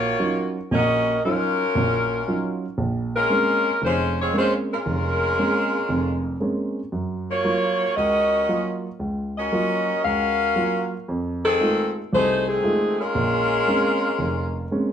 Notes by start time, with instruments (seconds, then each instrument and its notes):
Already playing: grand piano A#1, saxophone section A#3 F4 F#4 C#5
0.20 grand piano F#3 C#4 D#4 F4
0.71 grand piano A#1 A#2, saxophone section C#4 F#4 A#4 D#5
1.25 saxophone section F#3 C#4 F4 A#4, grand piano F#3 C#4 D#4 F4
1.75 grand piano A#1 A#2
2.28 grand piano F#3 C#4 D#4 F4
2.78 grand piano A#1
3.16 saxophone section G#3 C#4 F4 A#4
3.30 grand piano G#3 A#3 C4 C#4
3.82 grand piano F1 F2, saxophone section G#3 C#4 F4 C5
4.21 saxophone section G#3 C4 F4 C#5
4.33 grand piano G#3 A#3 C4 C#4
4.38 saxophone section G#3 C#4 F4 C5
4.73 saxophone section G#3 C#4 F4 A#4
4.86 grand piano F1
5.39 grand piano G#3 A#3 C4 C#4
5.89 grand piano F1 F2
6.40 grand piano G#3 A#3 C4 C#4
6.92 grand piano F#2
7.30 saxophone section A#3 F4 F#4 C#5
7.44 grand piano F#3 A#3 F4
7.97 grand piano C#2, saxophone section C#4 F#4 A#4 D#5
8.48 grand piano F#3 A#3 F4
8.99 grand piano C#2
9.38 saxophone section C#4 F#4 A#4 D#5
9.52 grand piano F#3 A#3 F4
10.04 grand piano C#2, saxophone section C#4 F#4 A#4 F5
10.56 grand piano F#3 A#3 F4
11.08 grand piano F2
11.45 saxophone section D#3 C4 G#4 A4
11.61 grand piano G#3 A3 D#4 F4
12.13 grand piano C2, saxophone section A3 D#4 G#4 C5
12.49 saxophone section D#3 A3 C4 G#4
12.64 grand piano G#3 A3 D#4 F4
12.99 saxophone section G#3 C#4 F4 A#4
13.15 grand piano A#1
13.67 grand piano G#3 A#3 C4 C#4
14.19 grand piano F1
14.71 grand piano G#3 A#3 C4 C#4